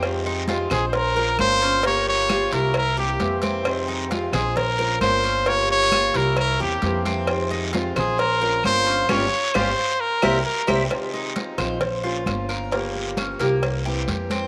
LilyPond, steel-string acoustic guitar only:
\new Staff \with { instrumentName = "Steel-string acoustic guitar" } { \time 4/4 \key f \minor \tempo 4 = 132 <c ees aes c' f'>4 <c ees aes c' f'>8 c'8 r8 <des' f' c''>8 <f bes des' f' c''>4 | <des f bes f' g'>4 <des f bes f' g'>8 <bes f' g'>8 r8 <bes c' e'>8 <c e bes c' e'>4 | <c ees aes c' f'>4 <c ees aes c' f'>8 <aes c' f'>8 r8 <des' f' c''>8 <f bes des' f' c''>4 | <des f bes f' g'>4 <des f bes f' g'>8 <bes f' g'>8 r8 <bes c' e'>8 <c e bes c' e'>4 |
<c ees aes c' f'>4 <c ees aes c' f'>8 <aes c' f'>8 r8 <des' f' c''>8 <f bes des' f' c''>4 | <g bes des'>8 r8 <g bes des'>8 r4 <g bes c'>8 r8 <g bes c'>8 | <c ees aes c' f'>4 <ees aes c' f'>8 <ees aes c' f'>8 r8 <bes des' f' c''>8 <bes des' f' c''>4 | <des f bes f' g'>4 <f bes f' g'>8 <f bes f' g'>8 r8 <e bes c' e'>8 <e bes c' e'>4 | }